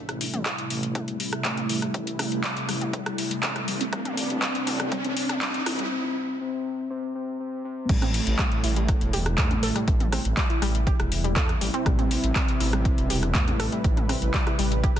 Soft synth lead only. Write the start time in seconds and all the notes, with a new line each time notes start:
Already playing: A3
1.45 A3
3.93 C4
4.92 C4
5.91 C4
6.41 C4
6.90 C4
7.15 C4
7.40 C4
7.64 C4
7.89 A3
9.38 A3
11.86 C4
13.35 A3